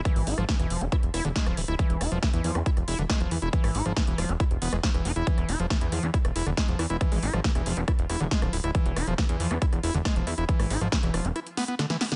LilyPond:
<<
  \new Staff \with { instrumentName = "Acid bass" } { \clef bass \time 4/4 \tempo 4 = 138 e8 e'16 f16 e16 e16 f16 e'16 e'16 r16 e'16 d16 gis16 f16 e16 e'16 | e8 e'16 f16 e16 e16 f16 e'16 e'16 r16 e'16 d16 gis16 f16 e16 e'16 | e8 e'16 f16 e16 e16 f16 e'16 e'16 r16 b16 gis16 f16 e16 e'16 e'16 | e8 e'16 f16 e16 e16 f16 e'16 e'16 r16 e'16 d16 gis16 f16 e'16 e'16 |
e8 e'16 f16 e16 e16 f16 e'16 e'16 r16 e'16 d16 gis16 f16 e'16 e'16 | e8 e'16 f16 e16 e16 f16 e'16 e'16 r16 e'16 d16 gis16 f16 e'16 e'16 | e8 e'16 f16 e16 e16 f16 e'16 e'16 r16 b16 b16 d16 e16 b16 d16 | }
  \new Staff \with { instrumentName = "Analog synth bass" } { \clef bass \time 4/4 r16 gis,,16 gis,,16 gis,,16 r16 e,,16 e,,16 e,,16 r16 e,,16 e,,16 e,,16 r16 d,,16 d,,16 d,,16 | r16 e,,16 e,,16 e,,16 r16 e,16 e,16 e,16 r16 e,,16 e,,16 e,,16 r16 e,,16 e,16 e,,16 | r16 gis,,16 gis,,16 gis,,16 r16 e,,16 e,,16 e,,16 r16 e,,16 e,,16 e,,16 r16 e,,16 e,,16 e,,16 | r16 e,,16 e,,16 e,,16 r16 e,16 e,16 e,16 r16 e,,16 e,,16 e,,16 r16 e,,16 e,16 e,,16 |
r16 gis,,16 gis,,16 gis,,16 r16 e,,16 e,,16 e,,16 r16 e,,16 e,,16 e,,16 r16 d,,16 d,,16 d,,16 | r16 e,,16 e,,16 e,,16 r16 e,16 e,16 e,16 r16 e,,16 e,,16 e,,16 r16 e,,16 e,16 e,,16 | r16 gis,,16 gis,,16 gis,,16 r16 e,,16 e,,16 e,,16 r2 | }
  \new DrumStaff \with { instrumentName = "Drums" } \drummode { \time 4/4 <hh bd ss>16 hho16 hho16 <hh ss>16 <hh bd sn>16 <hh ss>16 hho16 hh16 <hh bd ss>16 hh16 <hho ss>16 hh16 <hh bd sn>16 <hh ss>16 hho16 <hh ss>16 | <hh bd>16 hh16 <hho ss>16 hh16 <hh bd ss sn>16 hh16 hho16 <hh ss>16 <hh bd>16 <hh ss>16 hho16 hh16 <hh bd ss sn>16 hh16 <hho ss>16 hh16 | <hh bd>16 <hho ss>16 hho16 <hh ss>16 <hh bd sn>16 hh16 <hho ss>16 hh16 <hh bd ss>16 hh16 hho16 <hh ss>16 <hh bd sn>16 <hh ss>16 hho16 hh16 | <hh bd>16 <hh ss>16 hho16 hh16 <hh bd ss sn>16 hh16 <hho ss>16 hh16 <hh bd>16 <hh ss>16 hho16 <hh ss>16 <hh bd sn>16 hh16 <hho ss>16 hh16 |
<hh bd ss>16 hho16 hho16 <hh ss>16 <hh bd sn>16 <hh ss>16 hho16 hh16 <hh bd ss>16 hh16 <hho ss>16 hh16 <hh bd sn>16 <hh ss>16 hho16 <hh ss>16 | <hh bd>16 hh16 <hho ss>16 hh16 <hh bd ss sn>16 hh16 hho16 <hh ss>16 <hh bd>16 <hh ss>16 hho16 hh16 <hh bd ss sn>16 hh16 <hho ss>16 hh16 | <hh bd>16 <hho ss>16 hho16 <hh ss>16 <hh bd sn>16 hh16 <hho ss>16 hh16 <hh ss>16 hh16 <hho sn>16 hh16 <hh sn>16 <hh sn>16 <hho sn>16 <hh sn>16 | }
>>